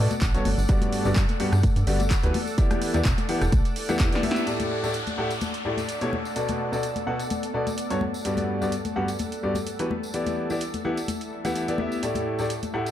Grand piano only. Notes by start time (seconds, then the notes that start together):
0.34 G2 B3 F#4 A4 C#5
0.69 G2 B3 F#4 G4 D5
1.05 G2 B3 F#4 G4 D5
1.40 G2 B3 F#4 G4 F#5
1.87 G2 B3 F#4 G4 D5
2.23 E3 B3 F#4 G4 B4
2.58 E3 B3 E4 G4 D5
2.94 E3 B3 E4 G4 D5
3.29 E3 B3 E4 G4 F#5
3.89 E3 B3 E4 G4 F#5
4.12 E3 B3 E4 G4 D5
4.23 B3 E4 G4 E5
4.47 A2 A3 E4 G4 D5
4.83 A2 A3 E4 G4 D5
5.18 A2 A3 E4 G4 F#5
5.65 A2 A3 E4 G4 D5
6.01 B2 A3 E4 G4 C#5
6.36 B2 B3 F#4 A4 D5
6.72 B2 B3 F#4 A4 D5
7.07 B2 B3 F#4 A4 F#5
7.54 B2 B3 F#4 A4 D5
7.90 G2 B3 F#4 A4 C#5
8.25 G2 B3 F#4 G4 D5
8.61 G2 B3 F#4 G4 D5
8.96 G2 B3 F#4 G4 F#5
9.43 G2 B3 F#4 G4 D5
9.79 E3 B3 F#4 G4 B4
10.14 E3 B3 E4 G4 D5
10.50 E3 B3 E4 G4 D5
10.85 E3 B3 E4 G4 F#5
11.45 E3 B3 E4 G4 F#5
11.68 E3 B3 E4 G4 D5
11.79 B3 E4 G4 E5
12.03 A2 A3 E4 G4 D5
12.39 A2 A3 E4 G4 D5
12.74 A2 A3 E4 G4 F#5